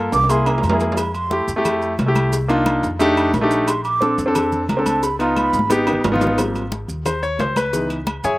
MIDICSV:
0, 0, Header, 1, 5, 480
1, 0, Start_track
1, 0, Tempo, 337838
1, 1387, Time_signature, 4, 2, 24, 8
1, 11912, End_track
2, 0, Start_track
2, 0, Title_t, "Flute"
2, 0, Program_c, 0, 73
2, 190, Note_on_c, 0, 86, 119
2, 431, Note_on_c, 0, 84, 99
2, 453, Note_off_c, 0, 86, 0
2, 663, Note_on_c, 0, 82, 93
2, 684, Note_off_c, 0, 84, 0
2, 1145, Note_off_c, 0, 82, 0
2, 1400, Note_on_c, 0, 83, 76
2, 1617, Note_off_c, 0, 83, 0
2, 1626, Note_on_c, 0, 84, 98
2, 2073, Note_off_c, 0, 84, 0
2, 5227, Note_on_c, 0, 84, 85
2, 5451, Note_off_c, 0, 84, 0
2, 5462, Note_on_c, 0, 86, 109
2, 5911, Note_off_c, 0, 86, 0
2, 6667, Note_on_c, 0, 82, 77
2, 6890, Note_off_c, 0, 82, 0
2, 6901, Note_on_c, 0, 81, 101
2, 7149, Note_on_c, 0, 83, 94
2, 7170, Note_off_c, 0, 81, 0
2, 7374, Note_off_c, 0, 83, 0
2, 7382, Note_on_c, 0, 82, 97
2, 7631, Note_on_c, 0, 83, 108
2, 7652, Note_off_c, 0, 82, 0
2, 8109, Note_off_c, 0, 83, 0
2, 11912, End_track
3, 0, Start_track
3, 0, Title_t, "Grand piano"
3, 0, Program_c, 1, 0
3, 0, Note_on_c, 1, 58, 94
3, 0, Note_on_c, 1, 65, 85
3, 0, Note_on_c, 1, 69, 99
3, 200, Note_off_c, 1, 58, 0
3, 207, Note_off_c, 1, 65, 0
3, 214, Note_off_c, 1, 69, 0
3, 418, Note_on_c, 1, 58, 85
3, 430, Note_on_c, 1, 64, 78
3, 442, Note_on_c, 1, 68, 95
3, 842, Note_off_c, 1, 58, 0
3, 848, Note_off_c, 1, 64, 0
3, 854, Note_off_c, 1, 68, 0
3, 1015, Note_on_c, 1, 58, 83
3, 1028, Note_on_c, 1, 64, 80
3, 1042, Note_on_c, 1, 68, 92
3, 1381, Note_off_c, 1, 58, 0
3, 1387, Note_off_c, 1, 64, 0
3, 1395, Note_off_c, 1, 68, 0
3, 1853, Note_on_c, 1, 57, 71
3, 1866, Note_on_c, 1, 64, 66
3, 1883, Note_on_c, 1, 67, 91
3, 2112, Note_off_c, 1, 57, 0
3, 2118, Note_off_c, 1, 64, 0
3, 2127, Note_off_c, 1, 67, 0
3, 2220, Note_on_c, 1, 57, 98
3, 2235, Note_on_c, 1, 64, 79
3, 2245, Note_on_c, 1, 67, 98
3, 2728, Note_off_c, 1, 57, 0
3, 2735, Note_off_c, 1, 64, 0
3, 2741, Note_off_c, 1, 67, 0
3, 2933, Note_on_c, 1, 57, 83
3, 2948, Note_on_c, 1, 64, 83
3, 2960, Note_on_c, 1, 67, 97
3, 3300, Note_off_c, 1, 57, 0
3, 3308, Note_off_c, 1, 64, 0
3, 3314, Note_off_c, 1, 67, 0
3, 3530, Note_on_c, 1, 58, 90
3, 3540, Note_on_c, 1, 62, 93
3, 3545, Note_on_c, 1, 63, 88
3, 3556, Note_on_c, 1, 65, 109
3, 4043, Note_off_c, 1, 58, 0
3, 4048, Note_off_c, 1, 62, 0
3, 4051, Note_off_c, 1, 63, 0
3, 4056, Note_off_c, 1, 65, 0
3, 4254, Note_on_c, 1, 57, 106
3, 4265, Note_on_c, 1, 62, 110
3, 4275, Note_on_c, 1, 63, 105
3, 4280, Note_on_c, 1, 67, 122
3, 4681, Note_off_c, 1, 57, 0
3, 4686, Note_off_c, 1, 62, 0
3, 4692, Note_off_c, 1, 63, 0
3, 4694, Note_off_c, 1, 67, 0
3, 4851, Note_on_c, 1, 57, 104
3, 4863, Note_on_c, 1, 62, 91
3, 4870, Note_on_c, 1, 63, 97
3, 4881, Note_on_c, 1, 67, 103
3, 5219, Note_off_c, 1, 57, 0
3, 5225, Note_off_c, 1, 62, 0
3, 5229, Note_off_c, 1, 63, 0
3, 5235, Note_off_c, 1, 67, 0
3, 5693, Note_on_c, 1, 60, 78
3, 5705, Note_on_c, 1, 62, 80
3, 5717, Note_on_c, 1, 69, 85
3, 5952, Note_off_c, 1, 60, 0
3, 5958, Note_off_c, 1, 62, 0
3, 5964, Note_off_c, 1, 69, 0
3, 6050, Note_on_c, 1, 60, 84
3, 6064, Note_on_c, 1, 62, 85
3, 6078, Note_on_c, 1, 69, 105
3, 6563, Note_off_c, 1, 60, 0
3, 6570, Note_off_c, 1, 62, 0
3, 6577, Note_off_c, 1, 69, 0
3, 6776, Note_on_c, 1, 60, 79
3, 6787, Note_on_c, 1, 62, 75
3, 6801, Note_on_c, 1, 69, 98
3, 7142, Note_off_c, 1, 60, 0
3, 7147, Note_off_c, 1, 62, 0
3, 7154, Note_off_c, 1, 69, 0
3, 7377, Note_on_c, 1, 59, 80
3, 7392, Note_on_c, 1, 63, 79
3, 7403, Note_on_c, 1, 65, 96
3, 7886, Note_off_c, 1, 59, 0
3, 7894, Note_off_c, 1, 63, 0
3, 7899, Note_off_c, 1, 65, 0
3, 8094, Note_on_c, 1, 59, 95
3, 8108, Note_on_c, 1, 63, 84
3, 8123, Note_on_c, 1, 67, 105
3, 8521, Note_off_c, 1, 59, 0
3, 8528, Note_off_c, 1, 63, 0
3, 8535, Note_off_c, 1, 67, 0
3, 8692, Note_on_c, 1, 59, 97
3, 8707, Note_on_c, 1, 63, 96
3, 8718, Note_on_c, 1, 65, 110
3, 9060, Note_off_c, 1, 59, 0
3, 9066, Note_on_c, 1, 53, 55
3, 9067, Note_off_c, 1, 63, 0
3, 9069, Note_on_c, 1, 55, 50
3, 9073, Note_off_c, 1, 65, 0
3, 9075, Note_on_c, 1, 58, 50
3, 9084, Note_on_c, 1, 60, 60
3, 9386, Note_off_c, 1, 53, 0
3, 9388, Note_off_c, 1, 55, 0
3, 9391, Note_off_c, 1, 58, 0
3, 9395, Note_off_c, 1, 60, 0
3, 10033, Note_on_c, 1, 72, 82
3, 10263, Note_off_c, 1, 72, 0
3, 10270, Note_on_c, 1, 73, 97
3, 10502, Note_off_c, 1, 73, 0
3, 10519, Note_on_c, 1, 72, 91
3, 10746, Note_off_c, 1, 72, 0
3, 10758, Note_on_c, 1, 71, 95
3, 10985, Note_on_c, 1, 52, 56
3, 10995, Note_on_c, 1, 59, 47
3, 11002, Note_on_c, 1, 63, 53
3, 11200, Note_off_c, 1, 71, 0
3, 11305, Note_off_c, 1, 52, 0
3, 11311, Note_off_c, 1, 59, 0
3, 11314, Note_off_c, 1, 63, 0
3, 11715, Note_on_c, 1, 80, 100
3, 11719, Note_on_c, 1, 68, 89
3, 11720, Note_on_c, 1, 73, 86
3, 11720, Note_on_c, 1, 76, 80
3, 11912, Note_off_c, 1, 68, 0
3, 11912, Note_off_c, 1, 73, 0
3, 11912, Note_off_c, 1, 76, 0
3, 11912, Note_off_c, 1, 80, 0
3, 11912, End_track
4, 0, Start_track
4, 0, Title_t, "Upright bass"
4, 0, Program_c, 2, 32
4, 176, Note_on_c, 2, 36, 90
4, 851, Note_off_c, 2, 36, 0
4, 897, Note_on_c, 2, 41, 92
4, 2021, Note_off_c, 2, 41, 0
4, 2097, Note_on_c, 2, 41, 91
4, 2771, Note_off_c, 2, 41, 0
4, 2821, Note_on_c, 2, 36, 93
4, 3944, Note_off_c, 2, 36, 0
4, 4019, Note_on_c, 2, 41, 97
4, 4693, Note_off_c, 2, 41, 0
4, 4736, Note_on_c, 2, 34, 92
4, 5861, Note_off_c, 2, 34, 0
4, 5939, Note_on_c, 2, 41, 100
4, 6613, Note_off_c, 2, 41, 0
4, 6656, Note_on_c, 2, 37, 80
4, 7781, Note_off_c, 2, 37, 0
4, 7857, Note_on_c, 2, 32, 93
4, 8532, Note_off_c, 2, 32, 0
4, 8579, Note_on_c, 2, 32, 89
4, 9702, Note_off_c, 2, 32, 0
4, 9779, Note_on_c, 2, 39, 89
4, 10453, Note_off_c, 2, 39, 0
4, 10497, Note_on_c, 2, 37, 81
4, 11622, Note_off_c, 2, 37, 0
4, 11701, Note_on_c, 2, 42, 97
4, 11912, Note_off_c, 2, 42, 0
4, 11912, End_track
5, 0, Start_track
5, 0, Title_t, "Drums"
5, 175, Note_on_c, 9, 65, 88
5, 177, Note_on_c, 9, 56, 74
5, 178, Note_on_c, 9, 63, 39
5, 183, Note_on_c, 9, 70, 80
5, 317, Note_off_c, 9, 65, 0
5, 320, Note_off_c, 9, 56, 0
5, 321, Note_off_c, 9, 63, 0
5, 326, Note_off_c, 9, 70, 0
5, 337, Note_on_c, 9, 65, 75
5, 417, Note_on_c, 9, 56, 104
5, 418, Note_on_c, 9, 63, 33
5, 420, Note_on_c, 9, 68, 88
5, 422, Note_on_c, 9, 70, 87
5, 479, Note_off_c, 9, 65, 0
5, 560, Note_off_c, 9, 56, 0
5, 560, Note_off_c, 9, 63, 0
5, 562, Note_off_c, 9, 68, 0
5, 564, Note_off_c, 9, 70, 0
5, 657, Note_on_c, 9, 63, 33
5, 658, Note_on_c, 9, 65, 95
5, 658, Note_on_c, 9, 68, 101
5, 661, Note_on_c, 9, 70, 28
5, 670, Note_on_c, 9, 75, 66
5, 799, Note_off_c, 9, 63, 0
5, 800, Note_off_c, 9, 65, 0
5, 800, Note_off_c, 9, 68, 0
5, 803, Note_off_c, 9, 70, 0
5, 812, Note_off_c, 9, 75, 0
5, 824, Note_on_c, 9, 66, 75
5, 899, Note_on_c, 9, 63, 78
5, 902, Note_on_c, 9, 70, 33
5, 905, Note_on_c, 9, 68, 85
5, 906, Note_on_c, 9, 56, 75
5, 966, Note_off_c, 9, 66, 0
5, 988, Note_on_c, 9, 66, 115
5, 1041, Note_off_c, 9, 63, 0
5, 1045, Note_off_c, 9, 70, 0
5, 1048, Note_off_c, 9, 68, 0
5, 1049, Note_off_c, 9, 56, 0
5, 1130, Note_off_c, 9, 66, 0
5, 1136, Note_on_c, 9, 70, 66
5, 1140, Note_on_c, 9, 63, 34
5, 1145, Note_on_c, 9, 56, 78
5, 1150, Note_on_c, 9, 66, 72
5, 1278, Note_off_c, 9, 70, 0
5, 1282, Note_off_c, 9, 63, 0
5, 1287, Note_off_c, 9, 56, 0
5, 1293, Note_off_c, 9, 66, 0
5, 1308, Note_on_c, 9, 66, 85
5, 1382, Note_on_c, 9, 63, 39
5, 1382, Note_on_c, 9, 70, 82
5, 1384, Note_on_c, 9, 68, 111
5, 1386, Note_on_c, 9, 56, 111
5, 1391, Note_on_c, 9, 75, 58
5, 1450, Note_off_c, 9, 66, 0
5, 1524, Note_off_c, 9, 63, 0
5, 1524, Note_off_c, 9, 70, 0
5, 1526, Note_off_c, 9, 68, 0
5, 1528, Note_off_c, 9, 56, 0
5, 1533, Note_off_c, 9, 75, 0
5, 1623, Note_on_c, 9, 63, 38
5, 1625, Note_on_c, 9, 70, 31
5, 1628, Note_on_c, 9, 68, 88
5, 1765, Note_off_c, 9, 63, 0
5, 1767, Note_off_c, 9, 70, 0
5, 1770, Note_off_c, 9, 68, 0
5, 1861, Note_on_c, 9, 56, 79
5, 1861, Note_on_c, 9, 63, 88
5, 1863, Note_on_c, 9, 70, 25
5, 2003, Note_off_c, 9, 56, 0
5, 2003, Note_off_c, 9, 63, 0
5, 2005, Note_off_c, 9, 70, 0
5, 2103, Note_on_c, 9, 63, 41
5, 2107, Note_on_c, 9, 70, 70
5, 2245, Note_off_c, 9, 63, 0
5, 2249, Note_off_c, 9, 70, 0
5, 2345, Note_on_c, 9, 70, 76
5, 2346, Note_on_c, 9, 56, 114
5, 2346, Note_on_c, 9, 68, 96
5, 2347, Note_on_c, 9, 63, 30
5, 2347, Note_on_c, 9, 64, 81
5, 2353, Note_on_c, 9, 75, 62
5, 2487, Note_off_c, 9, 70, 0
5, 2488, Note_off_c, 9, 56, 0
5, 2488, Note_off_c, 9, 68, 0
5, 2489, Note_off_c, 9, 63, 0
5, 2489, Note_off_c, 9, 64, 0
5, 2495, Note_off_c, 9, 75, 0
5, 2584, Note_on_c, 9, 63, 32
5, 2586, Note_on_c, 9, 70, 25
5, 2726, Note_off_c, 9, 63, 0
5, 2728, Note_off_c, 9, 70, 0
5, 2823, Note_on_c, 9, 70, 30
5, 2825, Note_on_c, 9, 63, 90
5, 2827, Note_on_c, 9, 56, 67
5, 2827, Note_on_c, 9, 66, 77
5, 2827, Note_on_c, 9, 68, 72
5, 2965, Note_off_c, 9, 70, 0
5, 2967, Note_off_c, 9, 63, 0
5, 2969, Note_off_c, 9, 56, 0
5, 2969, Note_off_c, 9, 66, 0
5, 2969, Note_off_c, 9, 68, 0
5, 3061, Note_on_c, 9, 63, 89
5, 3063, Note_on_c, 9, 70, 69
5, 3064, Note_on_c, 9, 68, 98
5, 3066, Note_on_c, 9, 56, 77
5, 3069, Note_on_c, 9, 75, 62
5, 3203, Note_off_c, 9, 63, 0
5, 3205, Note_off_c, 9, 70, 0
5, 3206, Note_off_c, 9, 68, 0
5, 3208, Note_off_c, 9, 56, 0
5, 3211, Note_off_c, 9, 75, 0
5, 3306, Note_on_c, 9, 56, 104
5, 3307, Note_on_c, 9, 63, 37
5, 3307, Note_on_c, 9, 70, 103
5, 3448, Note_off_c, 9, 56, 0
5, 3449, Note_off_c, 9, 63, 0
5, 3449, Note_off_c, 9, 70, 0
5, 3545, Note_on_c, 9, 68, 75
5, 3546, Note_on_c, 9, 63, 34
5, 3546, Note_on_c, 9, 70, 29
5, 3687, Note_off_c, 9, 68, 0
5, 3688, Note_off_c, 9, 63, 0
5, 3688, Note_off_c, 9, 70, 0
5, 3778, Note_on_c, 9, 63, 94
5, 3783, Note_on_c, 9, 68, 100
5, 3788, Note_on_c, 9, 70, 28
5, 3788, Note_on_c, 9, 75, 67
5, 3789, Note_on_c, 9, 56, 75
5, 3921, Note_off_c, 9, 63, 0
5, 3925, Note_off_c, 9, 68, 0
5, 3930, Note_off_c, 9, 70, 0
5, 3930, Note_off_c, 9, 75, 0
5, 3931, Note_off_c, 9, 56, 0
5, 4025, Note_on_c, 9, 63, 39
5, 4026, Note_on_c, 9, 56, 71
5, 4029, Note_on_c, 9, 70, 65
5, 4167, Note_off_c, 9, 63, 0
5, 4168, Note_off_c, 9, 56, 0
5, 4171, Note_off_c, 9, 70, 0
5, 4259, Note_on_c, 9, 56, 109
5, 4264, Note_on_c, 9, 70, 84
5, 4266, Note_on_c, 9, 63, 34
5, 4272, Note_on_c, 9, 68, 80
5, 4401, Note_off_c, 9, 56, 0
5, 4406, Note_off_c, 9, 70, 0
5, 4408, Note_off_c, 9, 63, 0
5, 4414, Note_off_c, 9, 68, 0
5, 4505, Note_on_c, 9, 70, 27
5, 4508, Note_on_c, 9, 68, 107
5, 4509, Note_on_c, 9, 63, 34
5, 4509, Note_on_c, 9, 75, 62
5, 4647, Note_off_c, 9, 70, 0
5, 4651, Note_off_c, 9, 63, 0
5, 4651, Note_off_c, 9, 68, 0
5, 4652, Note_off_c, 9, 75, 0
5, 4743, Note_on_c, 9, 63, 92
5, 4744, Note_on_c, 9, 70, 31
5, 4745, Note_on_c, 9, 56, 72
5, 4746, Note_on_c, 9, 66, 87
5, 4746, Note_on_c, 9, 68, 92
5, 4885, Note_off_c, 9, 63, 0
5, 4886, Note_off_c, 9, 70, 0
5, 4887, Note_off_c, 9, 56, 0
5, 4888, Note_off_c, 9, 66, 0
5, 4888, Note_off_c, 9, 68, 0
5, 4985, Note_on_c, 9, 56, 79
5, 4987, Note_on_c, 9, 70, 69
5, 4988, Note_on_c, 9, 63, 39
5, 5127, Note_off_c, 9, 56, 0
5, 5129, Note_off_c, 9, 70, 0
5, 5130, Note_off_c, 9, 63, 0
5, 5222, Note_on_c, 9, 68, 106
5, 5224, Note_on_c, 9, 56, 106
5, 5225, Note_on_c, 9, 75, 59
5, 5226, Note_on_c, 9, 70, 95
5, 5231, Note_on_c, 9, 63, 37
5, 5364, Note_off_c, 9, 68, 0
5, 5366, Note_off_c, 9, 56, 0
5, 5367, Note_off_c, 9, 75, 0
5, 5368, Note_off_c, 9, 70, 0
5, 5373, Note_off_c, 9, 63, 0
5, 5463, Note_on_c, 9, 70, 29
5, 5468, Note_on_c, 9, 68, 82
5, 5472, Note_on_c, 9, 63, 38
5, 5605, Note_off_c, 9, 70, 0
5, 5610, Note_off_c, 9, 68, 0
5, 5614, Note_off_c, 9, 63, 0
5, 5704, Note_on_c, 9, 70, 30
5, 5707, Note_on_c, 9, 56, 67
5, 5707, Note_on_c, 9, 63, 87
5, 5846, Note_off_c, 9, 70, 0
5, 5849, Note_off_c, 9, 56, 0
5, 5849, Note_off_c, 9, 63, 0
5, 5945, Note_on_c, 9, 70, 66
5, 5952, Note_on_c, 9, 63, 36
5, 6087, Note_off_c, 9, 70, 0
5, 6094, Note_off_c, 9, 63, 0
5, 6183, Note_on_c, 9, 68, 106
5, 6184, Note_on_c, 9, 70, 84
5, 6186, Note_on_c, 9, 56, 110
5, 6190, Note_on_c, 9, 75, 63
5, 6192, Note_on_c, 9, 63, 35
5, 6192, Note_on_c, 9, 64, 85
5, 6325, Note_off_c, 9, 68, 0
5, 6326, Note_off_c, 9, 70, 0
5, 6328, Note_off_c, 9, 56, 0
5, 6332, Note_off_c, 9, 75, 0
5, 6334, Note_off_c, 9, 63, 0
5, 6334, Note_off_c, 9, 64, 0
5, 6424, Note_on_c, 9, 70, 31
5, 6427, Note_on_c, 9, 63, 37
5, 6427, Note_on_c, 9, 64, 77
5, 6566, Note_off_c, 9, 70, 0
5, 6569, Note_off_c, 9, 63, 0
5, 6569, Note_off_c, 9, 64, 0
5, 6664, Note_on_c, 9, 70, 31
5, 6666, Note_on_c, 9, 56, 74
5, 6666, Note_on_c, 9, 63, 90
5, 6669, Note_on_c, 9, 66, 71
5, 6669, Note_on_c, 9, 68, 80
5, 6806, Note_off_c, 9, 70, 0
5, 6808, Note_off_c, 9, 56, 0
5, 6808, Note_off_c, 9, 63, 0
5, 6811, Note_off_c, 9, 66, 0
5, 6811, Note_off_c, 9, 68, 0
5, 6904, Note_on_c, 9, 68, 105
5, 6906, Note_on_c, 9, 70, 76
5, 6908, Note_on_c, 9, 56, 74
5, 6911, Note_on_c, 9, 63, 83
5, 6911, Note_on_c, 9, 75, 57
5, 7046, Note_off_c, 9, 68, 0
5, 7048, Note_off_c, 9, 70, 0
5, 7050, Note_off_c, 9, 56, 0
5, 7053, Note_off_c, 9, 63, 0
5, 7053, Note_off_c, 9, 75, 0
5, 7145, Note_on_c, 9, 56, 106
5, 7146, Note_on_c, 9, 70, 84
5, 7287, Note_off_c, 9, 56, 0
5, 7289, Note_off_c, 9, 70, 0
5, 7386, Note_on_c, 9, 68, 74
5, 7388, Note_on_c, 9, 63, 36
5, 7388, Note_on_c, 9, 70, 29
5, 7528, Note_off_c, 9, 68, 0
5, 7530, Note_off_c, 9, 63, 0
5, 7530, Note_off_c, 9, 70, 0
5, 7623, Note_on_c, 9, 56, 81
5, 7623, Note_on_c, 9, 68, 98
5, 7625, Note_on_c, 9, 63, 73
5, 7630, Note_on_c, 9, 70, 30
5, 7635, Note_on_c, 9, 75, 69
5, 7765, Note_off_c, 9, 56, 0
5, 7765, Note_off_c, 9, 68, 0
5, 7767, Note_off_c, 9, 63, 0
5, 7772, Note_off_c, 9, 70, 0
5, 7777, Note_off_c, 9, 75, 0
5, 7863, Note_on_c, 9, 56, 76
5, 7865, Note_on_c, 9, 70, 73
5, 7943, Note_on_c, 9, 63, 94
5, 8005, Note_off_c, 9, 56, 0
5, 8007, Note_off_c, 9, 70, 0
5, 8085, Note_off_c, 9, 63, 0
5, 8097, Note_on_c, 9, 68, 87
5, 8100, Note_on_c, 9, 56, 111
5, 8105, Note_on_c, 9, 63, 96
5, 8107, Note_on_c, 9, 70, 83
5, 8239, Note_off_c, 9, 68, 0
5, 8242, Note_off_c, 9, 56, 0
5, 8247, Note_off_c, 9, 63, 0
5, 8249, Note_off_c, 9, 70, 0
5, 8339, Note_on_c, 9, 65, 75
5, 8339, Note_on_c, 9, 68, 116
5, 8345, Note_on_c, 9, 60, 76
5, 8350, Note_on_c, 9, 70, 30
5, 8351, Note_on_c, 9, 75, 71
5, 8423, Note_on_c, 9, 64, 67
5, 8481, Note_off_c, 9, 65, 0
5, 8481, Note_off_c, 9, 68, 0
5, 8488, Note_off_c, 9, 60, 0
5, 8492, Note_off_c, 9, 70, 0
5, 8493, Note_off_c, 9, 75, 0
5, 8565, Note_off_c, 9, 64, 0
5, 8584, Note_on_c, 9, 56, 69
5, 8584, Note_on_c, 9, 61, 76
5, 8585, Note_on_c, 9, 64, 98
5, 8588, Note_on_c, 9, 66, 105
5, 8588, Note_on_c, 9, 68, 87
5, 8589, Note_on_c, 9, 70, 31
5, 8726, Note_off_c, 9, 56, 0
5, 8726, Note_off_c, 9, 61, 0
5, 8727, Note_off_c, 9, 64, 0
5, 8730, Note_off_c, 9, 66, 0
5, 8730, Note_off_c, 9, 68, 0
5, 8732, Note_off_c, 9, 70, 0
5, 8746, Note_on_c, 9, 64, 96
5, 8826, Note_on_c, 9, 56, 80
5, 8826, Note_on_c, 9, 61, 90
5, 8831, Note_on_c, 9, 66, 101
5, 8831, Note_on_c, 9, 70, 77
5, 8888, Note_off_c, 9, 64, 0
5, 8906, Note_on_c, 9, 64, 81
5, 8968, Note_off_c, 9, 56, 0
5, 8968, Note_off_c, 9, 61, 0
5, 8973, Note_off_c, 9, 66, 0
5, 8973, Note_off_c, 9, 70, 0
5, 9048, Note_off_c, 9, 64, 0
5, 9063, Note_on_c, 9, 56, 102
5, 9068, Note_on_c, 9, 63, 34
5, 9068, Note_on_c, 9, 68, 96
5, 9069, Note_on_c, 9, 75, 63
5, 9070, Note_on_c, 9, 70, 84
5, 9205, Note_off_c, 9, 56, 0
5, 9210, Note_off_c, 9, 63, 0
5, 9210, Note_off_c, 9, 68, 0
5, 9211, Note_off_c, 9, 75, 0
5, 9212, Note_off_c, 9, 70, 0
5, 9310, Note_on_c, 9, 63, 35
5, 9312, Note_on_c, 9, 70, 28
5, 9314, Note_on_c, 9, 68, 89
5, 9452, Note_off_c, 9, 63, 0
5, 9454, Note_off_c, 9, 70, 0
5, 9457, Note_off_c, 9, 68, 0
5, 9546, Note_on_c, 9, 63, 94
5, 9548, Note_on_c, 9, 56, 69
5, 9552, Note_on_c, 9, 70, 30
5, 9688, Note_off_c, 9, 63, 0
5, 9690, Note_off_c, 9, 56, 0
5, 9694, Note_off_c, 9, 70, 0
5, 9784, Note_on_c, 9, 63, 37
5, 9791, Note_on_c, 9, 70, 69
5, 9926, Note_off_c, 9, 63, 0
5, 9933, Note_off_c, 9, 70, 0
5, 10024, Note_on_c, 9, 56, 101
5, 10026, Note_on_c, 9, 75, 65
5, 10027, Note_on_c, 9, 63, 33
5, 10027, Note_on_c, 9, 64, 78
5, 10028, Note_on_c, 9, 68, 93
5, 10029, Note_on_c, 9, 70, 74
5, 10167, Note_off_c, 9, 56, 0
5, 10168, Note_off_c, 9, 75, 0
5, 10169, Note_off_c, 9, 63, 0
5, 10169, Note_off_c, 9, 64, 0
5, 10170, Note_off_c, 9, 68, 0
5, 10171, Note_off_c, 9, 70, 0
5, 10265, Note_on_c, 9, 63, 30
5, 10271, Note_on_c, 9, 70, 30
5, 10407, Note_off_c, 9, 63, 0
5, 10413, Note_off_c, 9, 70, 0
5, 10503, Note_on_c, 9, 63, 85
5, 10505, Note_on_c, 9, 56, 68
5, 10508, Note_on_c, 9, 66, 77
5, 10508, Note_on_c, 9, 68, 77
5, 10511, Note_on_c, 9, 70, 27
5, 10645, Note_off_c, 9, 63, 0
5, 10647, Note_off_c, 9, 56, 0
5, 10650, Note_off_c, 9, 66, 0
5, 10650, Note_off_c, 9, 68, 0
5, 10653, Note_off_c, 9, 70, 0
5, 10743, Note_on_c, 9, 56, 80
5, 10744, Note_on_c, 9, 63, 88
5, 10748, Note_on_c, 9, 68, 114
5, 10749, Note_on_c, 9, 75, 64
5, 10752, Note_on_c, 9, 70, 64
5, 10885, Note_off_c, 9, 56, 0
5, 10886, Note_off_c, 9, 63, 0
5, 10890, Note_off_c, 9, 68, 0
5, 10891, Note_off_c, 9, 75, 0
5, 10894, Note_off_c, 9, 70, 0
5, 10984, Note_on_c, 9, 56, 113
5, 10991, Note_on_c, 9, 70, 90
5, 11127, Note_off_c, 9, 56, 0
5, 11133, Note_off_c, 9, 70, 0
5, 11222, Note_on_c, 9, 63, 35
5, 11227, Note_on_c, 9, 68, 79
5, 11231, Note_on_c, 9, 70, 30
5, 11364, Note_off_c, 9, 63, 0
5, 11369, Note_off_c, 9, 68, 0
5, 11373, Note_off_c, 9, 70, 0
5, 11463, Note_on_c, 9, 63, 93
5, 11464, Note_on_c, 9, 68, 99
5, 11467, Note_on_c, 9, 56, 68
5, 11472, Note_on_c, 9, 70, 29
5, 11472, Note_on_c, 9, 75, 67
5, 11605, Note_off_c, 9, 63, 0
5, 11606, Note_off_c, 9, 68, 0
5, 11609, Note_off_c, 9, 56, 0
5, 11614, Note_off_c, 9, 70, 0
5, 11614, Note_off_c, 9, 75, 0
5, 11705, Note_on_c, 9, 63, 37
5, 11708, Note_on_c, 9, 56, 75
5, 11709, Note_on_c, 9, 70, 64
5, 11847, Note_off_c, 9, 63, 0
5, 11850, Note_off_c, 9, 56, 0
5, 11851, Note_off_c, 9, 70, 0
5, 11912, End_track
0, 0, End_of_file